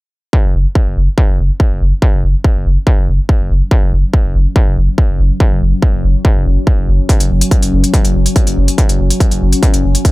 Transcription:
0.33 F#3 C#4, kick
0.44 F#1
0.54 F#1
0.75 kick
0.86 F#1
0.97 F#1
1.18 kick
1.29 F#1
1.39 F#1
1.60 kick
1.71 F#1
1.81 F#1
2.02 kick
2.13 F#1
2.23 F#1
2.44 kick
2.55 F#1
2.66 F#1
2.87 kick
2.98 F#1
3.08 F#1
3.29 kick
3.40 F#1
3.50 F#1
3.71 kick
3.82 F#1
3.92 F#1
4.14 kick
4.24 F#1
4.35 F#1
4.56 kick
4.67 F#1
4.77 F#1
4.98 kick
5.09 F#1
5.19 F#1
5.40 kick
5.51 F#1
5.61 F#1
5.82 kick
5.94 F#1
6.04 F#1
6.25 kick
6.36 F#1
6.46 F#1
6.67 kick
6.78 F#1
6.88 F#1
7.09 kick, closed hi-hat
7.20 F#1, closed hi-hat
7.30 F#1
7.41 closed hi-hat
7.51 kick, closed hi-hat
7.62 F#1, closed hi-hat
7.73 F#1
7.84 closed hi-hat
7.94 kick, closed hi-hat
8.05 F#1, closed hi-hat
8.15 F#1
8.26 closed hi-hat
8.36 kick, closed hi-hat
8.47 F#1, closed hi-hat
8.57 F#1
8.68 closed hi-hat
8.78 kick, closed hi-hat
8.89 F#1, closed hi-hat
8.99 F#1
9.10 closed hi-hat
9.20 kick, closed hi-hat
9.31 F#1, closed hi-hat
9.42 F#1
9.53 closed hi-hat
9.63 kick, closed hi-hat
9.74 F#1, closed hi-hat
9.84 F#1
9.95 closed hi-hat
10.05 kick, closed hi-hat

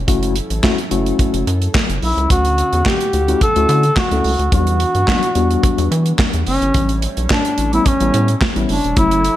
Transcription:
Already playing: C#4
0.07 F#1 F#3 A3 C#4 E4 F#4 A4, kick, closed hi-hat
0.23 closed hi-hat
0.36 closed hi-hat
0.50 A1, closed hi-hat
0.63 A3 C#4 E4 F#4, kick, snare, clap
0.78 closed hi-hat
0.91 F#1 A3 C#4 E4 F#4, closed hi-hat
1.06 closed hi-hat
1.19 kick, closed hi-hat
1.34 F#1, closed hi-hat
1.47 F#2, closed hi-hat
1.62 closed hi-hat
1.75 kick, snare, clap
1.89 F#1, closed hi-hat
2.02 B1 E4, open hi-hat
2.17 C#2, closed hi-hat
2.30 D2 D3 A3 F#4 F#5, kick, closed hi-hat
2.45 closed hi-hat
2.58 closed hi-hat
2.73 E2, closed hi-hat
2.86 G4, kick, snare, clap
3.01 closed hi-hat
3.13 D2 E4 F#4, closed hi-hat
3.28 A3 C#4 E4 F#4, closed hi-hat
3.41 A4, kick, closed hi-hat
3.56 D2 A3 C#4 E4 F#4, closed hi-hat
3.69 D3, closed hi-hat
3.83 closed hi-hat
3.97 F#4, kick, snare, clap
4.11 D2 A3 C#4 E4 A4, closed hi-hat
4.24 C#2, open hi-hat
4.39 D2, closed hi-hat
4.52 E2 E3 G3 B3 D4 F#4, kick, closed hi-hat
4.67 closed hi-hat
4.80 closed hi-hat
4.95 G2, closed hi-hat
5.07 G3 B3 D4 F#4, kick, snare, clap
5.23 closed hi-hat
5.35 E2 G3 B3 D4 F#4, closed hi-hat
5.51 closed hi-hat
5.63 kick, closed hi-hat
5.78 E2, closed hi-hat
5.91 E3, closed hi-hat
6.06 closed hi-hat
6.19 kick, snare, clap
6.33 E2, closed hi-hat
6.46 F#1 C#4, open hi-hat
6.62 G1, closed hi-hat
6.74 A1 A3 C#5, kick, closed hi-hat
6.89 closed hi-hat
7.02 closed hi-hat
7.17 B1, closed hi-hat
7.30 D4, kick, snare, clap
7.45 closed hi-hat
7.58 A1 C#4 E4, closed hi-hat
7.73 G3 B3 C#4 E4, closed hi-hat
7.86 C#4, kick, closed hi-hat
8.00 A1 G3 B3 C#4 E4, closed hi-hat
8.14 A2, closed hi-hat
8.28 closed hi-hat
8.41 kick, snare, clap
8.56 A1 G3 B3 C#4 E4, closed hi-hat
8.69 F#1 D4, open hi-hat
8.84 E1, closed hi-hat
8.96 F#1 F#3 A3 C#4 E4 A4, kick, closed hi-hat
9.11 closed hi-hat
9.24 closed hi-hat

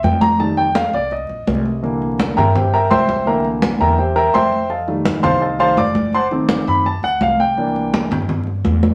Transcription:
0.03 F2 G5, high conga
0.21 A#5, high conga
0.39 D#3 G3 A3 A5, high conga
0.57 G5, high conga
0.75 F5, high conga
0.93 C2 D5, high conga
1.11 D#5, high conga
1.29 A#1, high conga
1.47 C2, high conga
1.66 high conga
1.82 D3 E3 A#3, high conga
2.02 high conga
2.20 high conga
2.37 G2 A#4 E5 G5 A#5, high conga, low conga
2.55 G4 C5 E5 G5, high conga, low conga
2.74 A#4 E5 G5 A#5, high conga
2.91 C2 C5 E5 G5 C6, high conga
3.09 high conga
3.26 D3 E3 A#3 A#4 E5 G5 A#5, high conga
3.45 high conga
3.62 high conga
3.80 E2 D3 E3 A#3 A#4 E5 G5 A#5, high conga
3.98 G4 C5 E5 G5, high conga
4.16 A#4 E5 G5 A#5, high conga
4.34 F2 C5 E5 G5 C6, high conga
4.53 high conga
4.70 A4 D#5 F5 A5, high conga
4.88 D#3 G3 A3, high conga
5.05 high conga
5.23 C2 C5 F5 A5 C6, high conga, low conga
5.41 A4 D#5 F5 A5, high conga
5.59 D#3 G3 A3 C5 F5 A5 C6, high conga
5.77 F#1 D5 D6, high conga
5.95 high conga
6.13 C5 F#5 A5 C6, high conga
6.31 D#3 A3 C4, high conga
6.49 high conga
6.67 F#2 B5, high conga
6.85 A5, high conga
7.03 D2 F#5, high conga
7.21 C2 F5, high conga
7.40 G5, high conga
7.57 E3 A#3 D4, high conga
7.76 high conga
7.94 high conga
8.11 G2, high conga, low conga
8.29 high conga, low conga
8.47 high conga
8.65 E2, high conga
8.83 high conga

